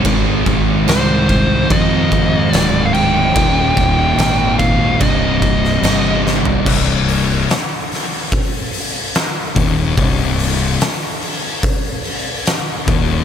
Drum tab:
CC |x-x-x-x-x-x-x-x-|x-x-x-x-x-x-x---|x---------------|----------------|
HH |----------------|----------------|--o-o-o-o-o-o-o-|o-o-o-o-o-o-o-o-|
SD |----o-------o---|----o------oo-o-|----o-o-----o---|----o-------o---|
FT |----------------|---------------o|----------------|----------------|
BD |o-o---o-o-o-----|o-o---o-o-o-----|o-------o-----o-|o-------o-----o-|